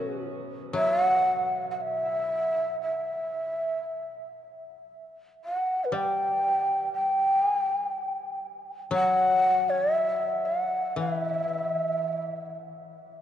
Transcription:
0, 0, Header, 1, 3, 480
1, 0, Start_track
1, 0, Tempo, 1015228
1, 356, Time_signature, 2, 2, 24, 8
1, 1324, Tempo, 1048951
1, 2764, Tempo, 1000000
1, 4684, Tempo, 1061947
1, 6162, End_track
2, 0, Start_track
2, 0, Title_t, "Shakuhachi"
2, 0, Program_c, 0, 77
2, 0, Note_on_c, 0, 71, 79
2, 104, Note_off_c, 0, 71, 0
2, 360, Note_on_c, 0, 76, 118
2, 487, Note_off_c, 0, 76, 0
2, 487, Note_on_c, 0, 78, 118
2, 787, Note_off_c, 0, 78, 0
2, 809, Note_on_c, 0, 78, 66
2, 856, Note_on_c, 0, 76, 96
2, 863, Note_off_c, 0, 78, 0
2, 1329, Note_off_c, 0, 76, 0
2, 1332, Note_on_c, 0, 76, 83
2, 2038, Note_off_c, 0, 76, 0
2, 2535, Note_on_c, 0, 78, 82
2, 2718, Note_on_c, 0, 71, 69
2, 2725, Note_off_c, 0, 78, 0
2, 2765, Note_on_c, 0, 79, 85
2, 2773, Note_off_c, 0, 71, 0
2, 3235, Note_off_c, 0, 79, 0
2, 3238, Note_on_c, 0, 79, 86
2, 3488, Note_off_c, 0, 79, 0
2, 3488, Note_on_c, 0, 80, 86
2, 3555, Note_off_c, 0, 80, 0
2, 3555, Note_on_c, 0, 79, 86
2, 3627, Note_off_c, 0, 79, 0
2, 3627, Note_on_c, 0, 80, 86
2, 3694, Note_off_c, 0, 80, 0
2, 3694, Note_on_c, 0, 79, 86
2, 3941, Note_off_c, 0, 79, 0
2, 4204, Note_on_c, 0, 78, 115
2, 4563, Note_on_c, 0, 73, 107
2, 4570, Note_off_c, 0, 78, 0
2, 4678, Note_off_c, 0, 73, 0
2, 4678, Note_on_c, 0, 76, 107
2, 4913, Note_on_c, 0, 78, 87
2, 4919, Note_off_c, 0, 76, 0
2, 5153, Note_off_c, 0, 78, 0
2, 5156, Note_on_c, 0, 76, 81
2, 5866, Note_off_c, 0, 76, 0
2, 6162, End_track
3, 0, Start_track
3, 0, Title_t, "Koto"
3, 0, Program_c, 1, 107
3, 0, Note_on_c, 1, 47, 60
3, 0, Note_on_c, 1, 54, 45
3, 0, Note_on_c, 1, 59, 48
3, 0, Note_on_c, 1, 61, 43
3, 0, Note_on_c, 1, 66, 46
3, 341, Note_off_c, 1, 54, 0
3, 347, Note_on_c, 1, 54, 55
3, 594, Note_off_c, 1, 59, 0
3, 716, Note_off_c, 1, 61, 0
3, 834, Note_off_c, 1, 47, 0
3, 838, Note_off_c, 1, 66, 0
3, 1802, Note_off_c, 1, 54, 0
3, 2752, Note_on_c, 1, 55, 56
3, 4186, Note_on_c, 1, 54, 64
3, 4196, Note_off_c, 1, 55, 0
3, 5143, Note_on_c, 1, 52, 55
3, 5633, Note_off_c, 1, 54, 0
3, 6162, Note_off_c, 1, 52, 0
3, 6162, End_track
0, 0, End_of_file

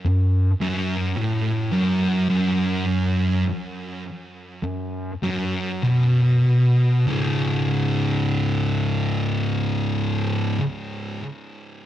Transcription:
0, 0, Header, 1, 2, 480
1, 0, Start_track
1, 0, Tempo, 1123596
1, 984, Time_signature, 4, 2, 24, 8
1, 985, Tempo, 1165049
1, 1945, Tempo, 1224490
1, 2905, Tempo, 1257862
1, 4726, End_track
2, 0, Start_track
2, 0, Title_t, "Distorted electric guitar"
2, 0, Program_c, 0, 30
2, 23, Note_on_c, 0, 42, 72
2, 214, Note_off_c, 0, 42, 0
2, 262, Note_on_c, 0, 42, 111
2, 494, Note_off_c, 0, 42, 0
2, 500, Note_on_c, 0, 45, 110
2, 734, Note_off_c, 0, 45, 0
2, 737, Note_on_c, 0, 42, 111
2, 975, Note_off_c, 0, 42, 0
2, 982, Note_on_c, 0, 42, 104
2, 1451, Note_off_c, 0, 42, 0
2, 1945, Note_on_c, 0, 42, 74
2, 2133, Note_off_c, 0, 42, 0
2, 2177, Note_on_c, 0, 42, 105
2, 2409, Note_off_c, 0, 42, 0
2, 2415, Note_on_c, 0, 47, 109
2, 2896, Note_off_c, 0, 47, 0
2, 2898, Note_on_c, 0, 37, 94
2, 2906, Note_on_c, 0, 44, 100
2, 2912, Note_on_c, 0, 49, 105
2, 4234, Note_off_c, 0, 37, 0
2, 4242, Note_off_c, 0, 44, 0
2, 4248, Note_off_c, 0, 49, 0
2, 4726, End_track
0, 0, End_of_file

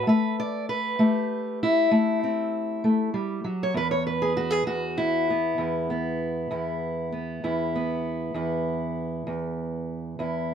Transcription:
0, 0, Header, 1, 2, 480
1, 0, Start_track
1, 0, Tempo, 614754
1, 46, Time_signature, 12, 3, 24, 8
1, 8230, End_track
2, 0, Start_track
2, 0, Title_t, "Steel-string acoustic guitar"
2, 0, Program_c, 0, 25
2, 55, Note_on_c, 0, 57, 67
2, 69, Note_on_c, 0, 71, 71
2, 298, Note_off_c, 0, 71, 0
2, 309, Note_on_c, 0, 74, 84
2, 536, Note_off_c, 0, 74, 0
2, 539, Note_on_c, 0, 71, 90
2, 764, Note_off_c, 0, 57, 0
2, 773, Note_on_c, 0, 57, 62
2, 779, Note_on_c, 0, 67, 39
2, 1253, Note_off_c, 0, 71, 0
2, 1272, Note_on_c, 0, 64, 85
2, 1484, Note_off_c, 0, 57, 0
2, 1494, Note_on_c, 0, 57, 69
2, 1745, Note_on_c, 0, 60, 45
2, 2209, Note_off_c, 0, 57, 0
2, 2215, Note_off_c, 0, 60, 0
2, 2218, Note_on_c, 0, 57, 58
2, 2447, Note_off_c, 0, 57, 0
2, 2450, Note_on_c, 0, 55, 56
2, 2685, Note_off_c, 0, 55, 0
2, 2688, Note_on_c, 0, 54, 59
2, 2700, Note_off_c, 0, 64, 0
2, 2835, Note_on_c, 0, 73, 78
2, 2904, Note_off_c, 0, 67, 0
2, 2922, Note_on_c, 0, 40, 70
2, 2928, Note_off_c, 0, 54, 0
2, 2941, Note_off_c, 0, 73, 0
2, 2944, Note_on_c, 0, 71, 85
2, 3050, Note_off_c, 0, 71, 0
2, 3053, Note_on_c, 0, 73, 83
2, 3170, Note_off_c, 0, 73, 0
2, 3175, Note_on_c, 0, 71, 64
2, 3294, Note_on_c, 0, 68, 82
2, 3407, Note_off_c, 0, 68, 0
2, 3410, Note_on_c, 0, 66, 84
2, 3517, Note_off_c, 0, 66, 0
2, 3517, Note_on_c, 0, 68, 76
2, 3640, Note_off_c, 0, 40, 0
2, 3642, Note_off_c, 0, 68, 0
2, 3643, Note_on_c, 0, 40, 63
2, 3646, Note_on_c, 0, 66, 76
2, 3771, Note_off_c, 0, 71, 0
2, 3885, Note_on_c, 0, 64, 89
2, 4125, Note_off_c, 0, 66, 0
2, 4140, Note_on_c, 0, 59, 43
2, 4352, Note_off_c, 0, 40, 0
2, 4356, Note_on_c, 0, 40, 70
2, 4604, Note_off_c, 0, 59, 0
2, 4607, Note_on_c, 0, 59, 41
2, 5070, Note_off_c, 0, 40, 0
2, 5076, Note_off_c, 0, 64, 0
2, 5080, Note_on_c, 0, 40, 63
2, 5086, Note_on_c, 0, 64, 42
2, 5559, Note_off_c, 0, 59, 0
2, 5562, Note_on_c, 0, 59, 43
2, 5797, Note_off_c, 0, 40, 0
2, 5800, Note_off_c, 0, 64, 0
2, 5806, Note_on_c, 0, 40, 65
2, 5810, Note_on_c, 0, 64, 45
2, 6052, Note_off_c, 0, 59, 0
2, 6055, Note_on_c, 0, 59, 47
2, 6505, Note_off_c, 0, 40, 0
2, 6514, Note_off_c, 0, 64, 0
2, 6515, Note_on_c, 0, 40, 62
2, 6523, Note_on_c, 0, 64, 42
2, 7227, Note_off_c, 0, 40, 0
2, 7236, Note_on_c, 0, 40, 67
2, 7946, Note_off_c, 0, 40, 0
2, 7951, Note_off_c, 0, 64, 0
2, 7955, Note_on_c, 0, 40, 63
2, 7961, Note_on_c, 0, 64, 45
2, 8230, Note_off_c, 0, 40, 0
2, 8230, Note_off_c, 0, 59, 0
2, 8230, Note_off_c, 0, 64, 0
2, 8230, End_track
0, 0, End_of_file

